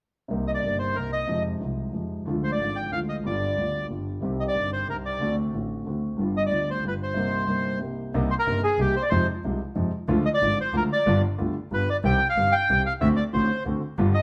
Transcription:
0.28 C2 C3 G3 A#3
0.32 D#4
0.47 D#5
0.54 D5
0.62 G1 G2 C3 G3 A#3
0.66 D#4
0.79 C5
0.94 C2 C3 G3 A#3 A#4
1.12 D#5
1.27 F2 C3 F3 G#3 D#4
1.61 C2 C3 F3 G#3 D#4
1.93 F2 C3 F3 G#3
1.97 D#4
2.26 D2 D3 F3 G#3 F4
2.44 C5
2.52 D5
2.59 G#1 G#2 D3 F3 G#3 F4
2.76 G5
2.90 D2 D3 F3 G#3 F5
2.95 F4
3.09 D#5
3.23 G1 G2 D3 G3 B3 F4 D5
3.56 D2 D3 G3 B3 F4
3.87 G1 G2 D3 G3 B3
3.92 F4
4.20 C2 C3 D#3 G3 C4 G4
4.40 D#5
4.48 D5
4.53 G1 G2 D#3 G3 C4
4.73 C5
4.87 C2 C3 D#3 G3 C4 A#4
4.91 G4
5.06 D5
5.19 D2 D3 A3 C4
5.24 F#4
5.52 A1 A2 D3 A3 C4
5.57 F#4
5.85 D2 D3 A3 C4 F#4
6.17 G1 G2 D3 G3 B3
6.21 F4
6.37 D#5
6.46 D5
6.51 D2 D3 G3 B3 F4
6.70 C5
6.82 G1 G2 D3 G3 B3 F4
6.88 B4
7.03 C5
7.16 C2 C3 G3 A#3 D#4
7.46 G1 G2 C3 G3 A#3
7.50 D#4
7.80 C2 C3 G3 A#3 D#4
8.14 C2 C3 G3 A#3 D#4
8.31 C5
8.39 A#4
8.46 G1 G2 C3 G3 A#3 D#4
8.64 G#4
8.78 C2 C3 G3 A#3 D#4 G4
8.96 C5
9.02 D5
9.10 F2 C3 F3 G#3 D#4 C5
9.44 C2 C3 F3 G#3 D#4
9.75 F2 C3 F3 G#3 D#4
10.08 D2 D3 F3 G#3 F4
10.26 D#5
10.34 D5
10.41 G#1 G#2 D3 F3 G#3 F4
10.61 C5
10.73 D2 D3 F3 G#3 F4 A#4
10.93 D5
11.06 G1 G2 D3 G3 B3 F4
11.38 D2 D3 G3 B3 F4
11.71 G1 G2 D3 G3 B3 F4 B4
11.90 D5
12.03 C2 C3 D#3 G3 C4 G4 G5
12.30 F5
12.36 G1 G2 D#3 G3 C4 G4
12.52 G5
12.69 C2 C3 D#3 G3 C4 G4
12.86 F5
13.01 D2 D3 A3 C4 F#4 E5
13.16 D5
13.33 A1 A2 D3 A3 C4 F#4 C5
13.65 D2 D3 A3 C4 F#4
13.98 G1 G2 D3 G3 B3 F4
14.14 D#5

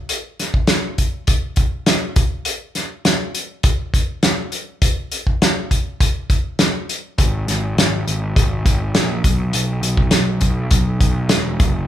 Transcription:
0.09 closed hi-hat
0.40 snare, closed hi-hat
0.54 kick
0.67 snare, closed hi-hat
0.98 kick, closed hi-hat
1.27 kick, closed hi-hat
1.56 kick, closed hi-hat
1.86 snare, closed hi-hat
2.16 kick, closed hi-hat
2.45 closed hi-hat
2.75 snare, closed hi-hat
3.05 snare, closed hi-hat
3.35 closed hi-hat
3.63 kick, closed hi-hat
3.94 kick, closed hi-hat
4.23 snare, closed hi-hat
4.52 closed hi-hat
4.82 kick, closed hi-hat
5.12 closed hi-hat
5.27 kick
5.42 snare, closed hi-hat
5.71 kick, closed hi-hat
6.00 kick, closed hi-hat
6.30 kick, closed hi-hat
6.59 snare, closed hi-hat
6.89 closed hi-hat
7.18 G#1, kick, closed hi-hat
7.47 G#1, snare, closed hi-hat
7.77 G#1, snare, closed hi-hat
8.07 G#1, closed hi-hat
8.36 G#1, kick, closed hi-hat
8.66 G#1, kick, closed hi-hat
8.95 A#1, snare, closed hi-hat
9.24 B1, kick, closed hi-hat
9.53 B1, closed hi-hat
9.82 B1, closed hi-hat
9.97 kick
10.11 B1, snare, closed hi-hat
10.41 B1, kick, closed hi-hat
10.71 B1, kick, closed hi-hat
11.01 B1, kick, closed hi-hat
11.29 E1, snare, closed hi-hat
11.60 F#1, kick, closed hi-hat

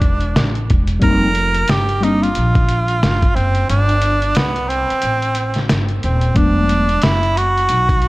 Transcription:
Already playing: E1 D4
0.01 kick, closed hi-hat
0.21 closed hi-hat
0.36 A1, snare, closed hi-hat
0.55 closed hi-hat
0.70 E1, kick, closed hi-hat
0.87 closed hi-hat
1.00 F1 G3 A#3 C4 A#4, kick, closed hi-hat
1.04 D#4
1.35 closed hi-hat
1.54 closed hi-hat
1.68 G1 G4, snare, closed hi-hat
1.89 closed hi-hat
2.01 G3 A#3 C4 D4 D#4, closed hi-hat
2.22 F4, closed hi-hat
2.35 A#1, closed hi-hat
2.55 kick, closed hi-hat
2.69 closed hi-hat
2.88 closed hi-hat
3.03 G1, snare, closed hi-hat
3.22 kick, closed hi-hat
3.35 F#1 C4, closed hi-hat
3.55 closed hi-hat
3.69 G1 D4, closed hi-hat
3.89 closed hi-hat
4.02 closed hi-hat
4.22 closed hi-hat
4.35 C2 B3, snare, closed hi-hat
4.56 closed hi-hat
4.68 C4, closed hi-hat
4.90 muted upright bass stroke, closed hi-hat
5.02 A1, closed hi-hat
5.22 closed hi-hat
5.35 closed hi-hat
5.54 snare, closed hi-hat
5.69 G1, snare, closed hi-hat
5.89 closed hi-hat
6.03 D#1 C4, closed hi-hat
6.21 closed hi-hat
6.34 E1 F#3 A3 B3 D4, kick, closed hi-hat
6.39 D4
6.69 closed hi-hat
6.89 closed hi-hat
7.02 F#1 E4, snare, closed hi-hat
7.23 closed hi-hat
7.37 F#4, closed hi-hat
7.58 closed hi-hat
7.69 B1, closed hi-hat
7.89 kick, closed hi-hat
8.02 closed hi-hat

